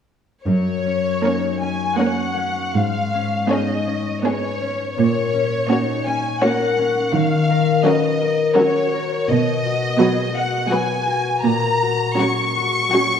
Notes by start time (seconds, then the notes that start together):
0.45 F#2 C#5
0.86 C#4
1.24 A#3 C#4 D#4 A#4 C#5
1.62 C#4 G#5
1.99 A#3 C#4 A#4 C#5 F#5
2.37 C#4
2.76 G#2 F5
3.14 C#4
3.49 B3 C#4 D#4 G#4 C#5 D#5
3.87 C#4
4.24 B3 C#4 G#4 B4 C#5
4.61 C#4
4.97 A#2 C#5
5.34 C#4
5.70 A#3 C#4 D#4 F#4 C#5
6.07 C#4 G#5
6.42 A#3 C#4 F#4 A#4 C#5 F#5
6.78 C#4
7.14 D#3 F5
7.50 A#4
7.85 F#3 C#4 F#4 A#4 B4 D#5
8.21 A#4
8.56 F#3 C#4 F#4 A#4 C#5
8.94 A#4
9.30 B2 D#5
9.66 F#4
10.00 F#3 B3 F#4 G#4 B4
10.36 F#4 F#5
10.71 F#3 B3 F#4 B4 G#5
11.07 F#4
11.44 A#2 A#5
11.83 F#4
12.18 F#3 C#4 F#4 G#4 C#6
12.57 F#4
12.93 F#3 C#4 F#4 C#5